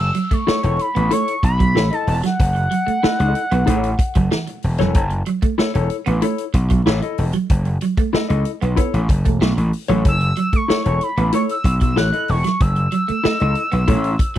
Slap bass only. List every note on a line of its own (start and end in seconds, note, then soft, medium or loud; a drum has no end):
0.00 0.10 F#1 loud
0.31 muted slap bass stroke soft
0.48 muted slap bass stroke soft
0.64 0.77 E1 medium
0.96 1.09 A1 loud
1.43 1.76 B1 medium
1.76 1.89 A1 medium
2.07 2.21 E1 loud
2.40 2.66 F#1 loud
2.87 muted slap bass stroke medium
3.04 muted slap bass stroke soft
3.20 3.33 C#2 medium
3.52 3.65 B1 loud
3.68 3.94 A1 loud
4.16 4.29 F#1 medium
4.64 4.77 E1 medium
4.80 4.95 E1 loud
4.95 5.21 F#1 loud
5.43 muted slap bass stroke medium
5.59 muted slap bass stroke soft
5.75 5.88 E1 medium
6.07 6.20 A1 loud
6.54 6.81 B1 loud
6.86 7.00 A1 loud
7.18 7.31 E1 medium
7.50 7.77 F#1 loud
7.98 muted slap bass stroke medium
8.14 muted slap bass stroke medium
8.30 8.43 C#2 medium
8.62 8.75 B1 medium
8.94 9.07 A1 medium
9.09 9.26 F#1 medium
9.26 9.39 E1 medium
9.41 9.54 B1 loud
9.57 9.71 A1 medium
9.89 10.02 A1 medium
10.05 10.32 F#1 loud
10.53 muted slap bass stroke soft
10.70 muted slap bass stroke soft
10.86 10.99 E1 medium
11.17 11.30 A1 loud
11.65 11.97 B1 medium
11.97 12.10 A1 medium
12.29 12.42 E1 medium
12.61 12.87 F#1 loud
13.09 muted slap bass stroke medium
13.25 muted slap bass stroke soft
13.41 13.54 C#2 medium
13.73 13.86 B1 loud
13.88 14.14 A1 loud